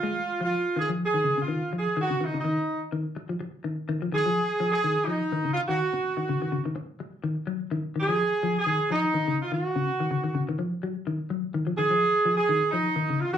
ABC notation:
X:1
M:4/4
L:1/16
Q:"Swing 16ths" 1/4=126
K:C#mix
V:1 name="Horn section"
E3 E3 G2 G3 E3 G2 | F2 D D4 z8 z | z2 G4- G G3 D4 E F- | F6- F z8 z |
z2 G4- G G3 D4 E F- | F6- F z8 z | z2 G4- G G3 D4 E F |]
V:2 name="Clean electric guitar" clef=bass
G,2 z E,2 z D, E,2 D, C, C, D,2 E,2 | D, C, D, C, D,2 z2 D,2 z E, z2 D,2 | D, E, D, E,2 z E,2 D,2 E,2 D, C,2 D,- | D, z2 D, C, D, C, D, z4 D,2 F,2 |
D, z D, E,2 z E,2 D,2 E,2 D, C,2 D,- | D, C,2 D, C, D, C, D, E,2 F,2 D,2 F,2 | D, E, D, E,2 z E,2 D,2 E,2 D, C,2 D, |]